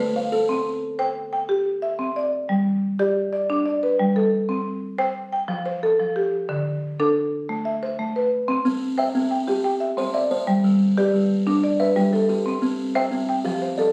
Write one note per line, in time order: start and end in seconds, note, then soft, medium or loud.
0.00 0.32 A3 medium
0.00 0.33 A3 medium
0.00 0.33 B4 medium
0.00 0.15 C5 medium
0.00 0.16 D5 medium
0.16 0.66 C5 medium
0.16 0.66 F5 medium
0.32 0.66 A4 medium
0.49 0.83 C4 medium
0.99 1.32 C5 medium
0.99 1.31 G5 medium
1.33 1.83 G5 medium
1.49 1.82 G4 medium
1.82 2.33 E5 medium
1.99 2.32 C4 medium
2.16 2.66 D5 medium
2.49 2.83 G3 medium
2.99 3.33 G4 medium
2.99 3.31 D5 medium
3.33 3.64 D5 medium
3.50 3.83 D4 medium
3.66 4.16 D5 medium
3.83 4.33 B4 medium
3.99 4.33 G3 medium
4.16 4.66 A4 medium
4.49 4.82 C4 medium
4.98 5.32 C5 medium
4.98 5.31 G5 medium
5.33 5.66 G5 medium
5.48 5.82 F3 medium
5.66 6.16 C5 medium
5.83 6.33 A4 medium
6.00 6.33 F3 medium
6.16 6.66 G4 medium
6.49 6.82 D3 medium
7.00 7.33 D4 medium
7.00 7.49 A4 medium
7.49 7.82 A3 medium
7.65 8.15 E5 medium
7.83 8.32 C5 medium
7.99 8.32 A3 medium
8.16 8.65 B4 medium
8.48 8.81 C4 medium
8.65 8.98 C4 medium
8.98 9.31 C5 medium
8.98 9.48 E5 medium
8.98 9.30 G5 medium
9.15 9.48 C4 medium
9.31 9.63 G5 medium
9.47 9.81 G4 medium
9.64 10.14 G5 medium
9.80 10.30 E5 medium
9.97 10.30 C4 medium
9.97 10.30 C5 medium
10.14 10.64 D5 medium
10.14 10.64 E5 medium
10.31 10.64 C5 medium
10.47 10.80 G3 medium
10.64 10.97 G3 medium
10.97 11.30 G4 medium
10.97 11.47 B4 medium
10.97 11.47 D5 medium
11.14 11.47 G3 medium
11.47 11.80 D4 medium
11.64 12.13 D5 medium
11.80 12.29 B4 medium
11.80 12.29 E5 medium
11.96 12.29 G3 medium
11.96 12.28 G4 medium
12.13 12.62 A4 medium
12.13 12.63 B4 medium
12.29 12.62 G4 medium
12.46 12.79 C4 medium
12.62 12.95 C4 medium
12.95 13.28 C5 medium
12.95 13.45 E5 medium
12.95 13.28 G5 medium
13.11 13.45 C4 medium
13.29 13.62 G5 medium
13.45 13.78 F3 medium
13.45 13.61 G4 medium
13.62 13.92 C5 medium
13.78 13.92 A4 medium
13.78 13.92 D5 medium